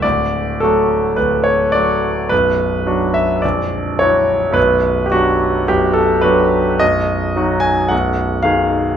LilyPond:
<<
  \new Staff \with { instrumentName = "Grand piano" } { \time 4/4 \key b \minor \tempo 4 = 107 d''4 a'4 b'8 cis''8 d''4 | b'4. e''8 d''4 cis''4 | b'8.~ b'32 g'32 fis'4 g'8 a'8 b'4 | \key b \lydian dis''4. gis''8 fis''4 eis''4 | }
  \new Staff \with { instrumentName = "Grand piano" } { \clef bass \time 4/4 \key b \minor <d,, d,>4 <fis a fis'>4 <d,, d,>4 <fis a fis'>4 | <b,,, b,,>4 <fis d' fis'>4 <ais,,, ais,,>4 <fis e' fis'>4 | <b,,, b,,>4 <fis d'>4 <b,,, b,,>4 <fis d' fis'>4 | \key b \lydian <b,,, b,,>4 <fis dis' fis'>4 <b,,, b,,>4 <dis dis' gis'>4 | }
>>